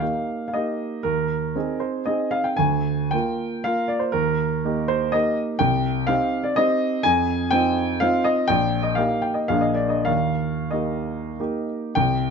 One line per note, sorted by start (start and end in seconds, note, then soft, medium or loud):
0.00 0.51 A#3 soft
0.00 0.51 D#4 soft
0.00 0.52 G4 soft
0.00 0.46 F5 medium
0.48 0.55 F5 soft
0.53 1.01 A#3 soft
0.53 1.01 D#4 soft
0.53 1.01 G4 soft
0.53 1.04 D#5 medium
1.03 1.54 D#2 soft
1.03 1.81 A#4 medium
1.56 2.03 C4 soft
1.56 2.03 D#4 soft
1.56 2.04 G#4 soft
1.80 2.06 C5 medium
2.06 2.55 C4 soft
2.06 2.55 D#4 soft
2.06 2.55 G#4 soft
2.06 2.32 D#5 medium
2.31 2.45 F5 medium
2.44 2.58 G5 medium
2.57 3.11 D2 soft
2.57 3.12 G#5 medium
3.11 3.61 A#3 soft
3.11 3.61 F4 soft
3.11 3.62 A#4 soft
3.11 3.64 G5 medium
3.64 4.10 A#3 soft
3.64 4.10 F4 soft
3.64 4.11 A#4 soft
3.64 3.89 F5 medium
3.88 4.01 D5 medium
3.99 4.13 C5 medium
4.12 4.63 D#2 medium
4.12 4.89 A#4 medium
4.65 5.11 A#3 soft
4.65 5.11 D#4 soft
4.65 5.11 G4 soft
4.88 5.14 C5 medium
5.12 5.56 A#3 soft
5.12 5.56 D#4 soft
5.12 5.56 G4 soft
5.12 5.36 D#5 medium
5.59 6.07 C2 medium
5.59 6.08 G5 medium
6.07 6.53 C4 soft
6.07 6.53 D#4 soft
6.07 6.53 G4 soft
6.07 6.44 F5 medium
6.44 6.56 D5 medium
6.56 7.01 C4 soft
6.56 7.01 D#4 soft
6.56 7.01 G4 soft
6.56 7.04 D#5 medium
7.03 7.51 F2 medium
7.03 7.52 G#5 medium
7.51 7.98 C4 soft
7.51 7.98 D#4 soft
7.51 7.98 F4 soft
7.51 8.01 G5 medium
8.00 8.45 C4 soft
8.00 8.45 D#4 soft
8.00 8.45 F4 soft
8.00 8.25 F5 medium
8.24 8.48 D#5 medium
8.48 8.96 A#1 medium
8.48 8.84 G5 medium
8.83 8.96 D#5 medium
8.95 9.46 A#3 soft
8.95 9.46 D#4 soft
8.95 9.47 G4 soft
8.95 9.23 F5 medium
9.22 9.36 G5 medium
9.34 9.49 D#5 soft
9.48 10.06 A#1 soft
9.48 10.04 A#3 soft
9.48 10.04 D4 soft
9.48 10.04 G#4 soft
9.48 9.63 F5 medium
9.61 9.77 D#5 medium
9.74 9.91 D5 medium
9.89 10.06 D#5 medium
10.05 10.70 D#2 soft
10.05 10.72 F5 medium
10.71 11.35 A#3 soft
10.71 11.35 D#4 soft
10.71 11.35 G4 soft
10.71 11.68 D#5 soft
11.40 11.93 A#3 soft
11.40 11.93 D#4 soft
11.40 11.93 G4 soft
11.95 12.30 C2 medium
11.95 12.30 G5 medium